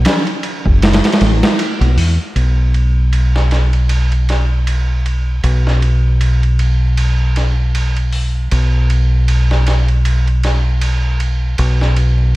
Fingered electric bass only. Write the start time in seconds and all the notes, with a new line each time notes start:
0.66 F#1
1.21 A1
1.81 B1
1.97 E2
2.36 B1
5.44 B1
8.52 B1
11.59 B1